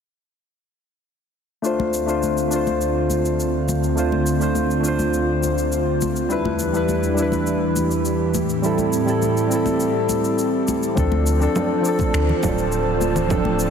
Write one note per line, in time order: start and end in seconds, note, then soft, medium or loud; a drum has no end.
1.62 6.27 D2 medium
1.62 6.27 D3 medium
1.62 2.04 A3 medium
1.62 6.27 C4 medium
1.62 2.05 D4 medium
1.62 2.05 F4 medium
1.62 6.27 F4 medium
1.62 cabasa soft
1.66 2.06 C5 medium
1.80 high conga medium
1.94 cabasa medium
2.06 2.46 A3 medium
2.06 2.48 D4 medium
2.06 2.49 F4 medium
2.06 cabasa soft
2.10 2.49 C5 medium
2.23 high conga medium
2.23 cabasa soft
2.38 cabasa soft
2.48 3.92 A3 medium
2.48 3.94 D4 medium
2.52 3.95 F4 medium
2.52 cabasa medium
2.56 3.96 C5 medium
2.67 high conga medium
2.67 cabasa soft
2.81 cabasa soft
3.10 high conga medium
3.10 cabasa medium
3.25 cabasa soft
3.40 cabasa soft
3.69 high conga medium
3.69 cabasa medium
3.84 cabasa soft
3.95 4.37 A3 medium
3.95 4.38 D4 medium
3.95 4.38 F4 medium
3.95 4.39 C5 medium
3.95 cabasa soft
4.12 high conga medium
4.27 cabasa medium
4.39 4.79 A3 medium
4.39 4.81 D4 medium
4.39 4.82 F4 medium
4.39 4.83 C5 medium
4.39 cabasa soft
4.55 high conga medium
4.55 cabasa soft
4.71 cabasa soft
4.80 6.25 A3 medium
4.80 6.26 D4 medium
4.84 6.28 F4 medium
4.84 6.29 C5 loud
4.84 cabasa medium
4.99 high conga medium
4.99 cabasa soft
5.14 cabasa soft
5.43 high conga medium
5.43 cabasa medium
5.58 cabasa soft
5.72 cabasa soft
6.01 high conga medium
6.01 cabasa medium
6.16 cabasa soft
6.29 8.33 E2 medium
6.29 10.93 E3 medium
6.29 6.70 G3 medium
6.29 6.71 D4 medium
6.29 8.33 D4 medium
6.29 6.72 E4 medium
6.29 10.93 G4 medium
6.29 6.72 B4 medium
6.29 cabasa soft
6.45 high conga medium
6.59 cabasa medium
6.73 7.13 G3 medium
6.73 7.14 D4 medium
6.73 7.15 E4 medium
6.73 7.16 B4 medium
6.73 cabasa soft
6.89 high conga medium
6.89 cabasa soft
7.03 cabasa soft
7.14 8.31 G3 medium
7.14 8.32 D4 medium
7.14 cabasa medium
7.19 8.34 E4 medium
7.19 8.35 B4 medium
7.32 high conga medium
7.32 cabasa soft
7.47 cabasa soft
7.76 high conga medium
7.76 cabasa medium
7.91 cabasa soft
8.05 cabasa soft
8.34 10.94 A2 medium
8.34 10.94 C4 medium
8.34 high conga medium
8.34 cabasa medium
8.49 cabasa soft
8.62 9.03 G3 medium
8.62 9.04 C4 medium
8.62 9.05 E4 medium
8.62 9.05 A4 medium
8.62 cabasa soft
8.78 high conga medium
8.78 cabasa soft
8.93 cabasa medium
9.06 9.46 G3 medium
9.06 9.47 C4 medium
9.06 9.48 E4 medium
9.06 9.49 A4 medium
9.06 cabasa soft
9.22 high conga medium
9.22 cabasa soft
9.37 cabasa soft
9.47 10.92 G3 medium
9.47 10.93 C4 medium
9.52 10.94 E4 medium
9.52 10.96 A4 loud
9.52 cabasa medium
9.66 high conga medium
9.66 cabasa soft
9.80 cabasa soft
10.09 high conga medium
10.09 cabasa medium
10.24 cabasa soft
10.39 cabasa soft
10.68 high conga medium
10.68 cabasa medium
10.83 cabasa soft
10.95 11.47 D2 medium
10.95 11.37 F3 medium
10.95 11.37 C4 medium
10.95 11.38 D4 medium
10.95 13.70 F4 medium
10.95 11.38 A4 medium
10.95 13.70 C5 medium
10.95 13.70 D5 medium
10.95 13.70 A5 medium
10.95 kick loud
10.95 cabasa soft
11.12 high conga medium
11.27 cabasa medium
11.39 11.80 F3 medium
11.39 11.81 C4 medium
11.39 11.81 D4 medium
11.39 11.82 A4 medium
11.39 cabasa soft
11.56 high conga medium
11.56 low conga medium
11.56 cabasa soft
11.81 13.25 F3 medium
11.81 13.26 C4 medium
11.85 13.27 D4 medium
11.85 13.29 A4 loud
11.85 cabasa medium
11.99 kick medium
11.99 high conga medium
11.99 cabasa soft
12.13 12.32 D2 medium
12.13 finger snap medium
12.13 cabasa soft
12.29 low conga medium
12.43 13.70 D1 medium
12.43 kick loud
12.43 high conga medium
12.43 low conga medium
12.43 cabasa medium
12.58 cabasa soft
12.72 cabasa soft
13.01 high conga medium
13.01 cabasa medium
13.16 low conga medium
13.16 cabasa soft
13.28 13.70 F3 medium
13.28 13.70 C4 medium
13.28 13.70 D4 medium
13.28 13.70 A4 medium
13.28 kick loud
13.28 low conga medium
13.28 cabasa soft
13.45 high conga medium
13.60 cabasa medium